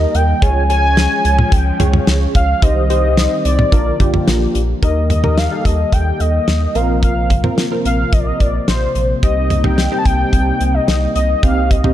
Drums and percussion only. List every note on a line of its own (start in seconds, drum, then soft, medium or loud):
0.15 closed hi-hat medium
0.42 kick loud
0.42 closed hi-hat medium
0.70 closed hi-hat medium
0.97 snare loud
0.97 closed hi-hat medium
1.25 closed hi-hat medium
1.39 mid tom loud
1.52 kick loud
1.52 closed hi-hat medium
1.80 closed hi-hat medium
1.80 mid tom loud
1.94 mid tom loud
2.07 snare loud
2.07 closed hi-hat medium
2.35 kick loud
2.35 closed hi-hat medium
2.62 kick loud
2.62 closed hi-hat medium
2.90 closed hi-hat medium
3.17 snare loud
3.17 closed hi-hat medium
3.45 closed hi-hat medium
3.59 mid tom loud
3.72 kick loud
3.72 closed hi-hat medium
4.00 kick loud
4.00 closed hi-hat medium
4.00 mid tom loud
4.14 mid tom loud
4.28 snare loud
4.28 closed hi-hat medium
4.55 closed hi-hat medium
4.83 kick loud
4.83 closed hi-hat medium
5.10 closed hi-hat medium
5.10 mid tom medium
5.24 mid tom medium
5.38 snare loud
5.38 closed hi-hat medium
5.65 kick medium
5.65 closed hi-hat medium
5.92 kick loud
5.92 closed hi-hat medium
6.20 closed hi-hat medium
6.48 snare loud
6.48 closed hi-hat medium
6.75 closed hi-hat medium
7.03 kick loud
7.03 closed hi-hat medium
7.30 kick medium
7.30 closed hi-hat medium
7.30 mid tom medium
7.44 mid tom medium
7.58 snare loud
7.58 closed hi-hat medium
7.85 closed hi-hat medium
8.13 kick loud
8.13 closed hi-hat medium
8.40 kick medium
8.40 closed hi-hat medium
8.68 snare loud
8.68 closed hi-hat medium
8.95 closed hi-hat medium
9.23 kick loud
9.23 closed hi-hat medium
9.50 closed hi-hat medium
9.50 mid tom medium
9.64 mid tom medium
9.78 snare loud
9.78 closed hi-hat medium
10.05 kick loud
10.05 closed hi-hat medium
10.33 kick loud
10.33 closed hi-hat medium
10.61 closed hi-hat medium
10.88 snare loud
10.88 closed hi-hat medium
11.16 closed hi-hat medium
11.43 kick loud
11.43 closed hi-hat medium
11.71 kick medium
11.71 closed hi-hat medium
11.84 mid tom medium